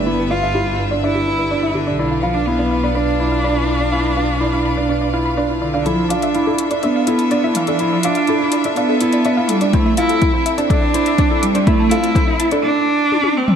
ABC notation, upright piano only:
X:1
M:4/4
L:1/16
Q:1/4=124
K:Ddor
V:1 name="Upright piano"
E2 F2 E E2 D D2 E2 D E2 D | E2 F2 E E2 D D2 E2 D E2 D | E2 F2 E E2 D D2 E2 D E2 D | E2 F2 E E2 D D2 E2 D E2 D |
E2 F2 E E2 D D2 E2 D E2 D | E2 F2 E E2 D D2 E2 D E2 D | E2 F2 E E2 D z8 |]